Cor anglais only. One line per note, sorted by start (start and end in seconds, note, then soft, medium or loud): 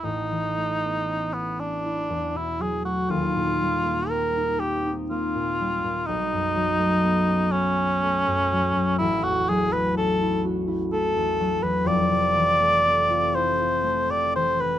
0.04 1.35 D#4 medium
1.34 1.61 B3 medium
1.60 2.38 D4 medium
2.37 2.63 E4 medium
2.62 2.84 G#4 medium
2.85 3.11 F#4 medium
3.10 4.10 F4 medium
4.09 4.61 A#4 medium
4.59 4.92 G4 medium
5.10 6.08 F4 medium
6.07 7.53 D#4 loud
7.52 8.97 C#4 medium
8.98 9.25 E4 loud
9.23 9.51 F#4 loud
9.49 9.74 G#4 medium
9.72 9.96 B4 loud
9.97 10.43 A4 loud
10.93 11.64 A4 loud
11.63 11.89 B4 loud
11.87 13.37 D5 loud
13.35 14.12 C5 medium
14.11 14.35 D5 loud
14.36 14.62 C5 loud
14.60 14.79 B4 loud